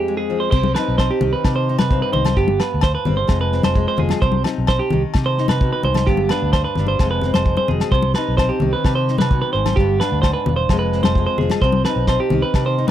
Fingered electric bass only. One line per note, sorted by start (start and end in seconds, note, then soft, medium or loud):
0.53 0.74 C2 medium
0.88 1.09 B1 medium
1.21 1.32 C2 medium
1.45 1.76 C3 medium
1.81 2.01 C3 medium
2.15 2.36 C2 medium
2.37 2.58 G1 loud
2.74 2.94 D2 medium
3.08 3.28 G1 medium
3.29 3.61 F1 medium
3.64 3.85 F1 medium
4.01 4.11 F1 medium
4.22 4.43 C2 medium
4.58 4.79 B1 medium
4.93 5.03 C2 medium
5.15 5.47 C3 medium
5.50 5.71 C3 medium
5.84 6.05 C2 medium
6.07 6.29 G1 loud
6.42 6.63 D2 medium
6.77 6.98 G1 medium
6.99 7.31 F1 loud
7.35 7.56 F1 medium
7.69 7.80 F1 medium
7.91 8.13 C2 medium
8.28 8.49 B1 medium
8.62 8.73 C2 medium
8.84 9.16 C3 medium
9.20 9.41 C3 medium
9.54 9.76 G#1 medium
9.77 9.99 G1 loud
10.12 10.33 D2 medium
10.47 10.68 E1 medium
10.69 11.01 F1 loud
11.04 11.25 F1 medium
11.39 11.50 F1 medium
11.61 11.83 C2 loud
11.96 12.17 B1 medium
12.31 12.42 C2 medium
12.54 12.85 C3 medium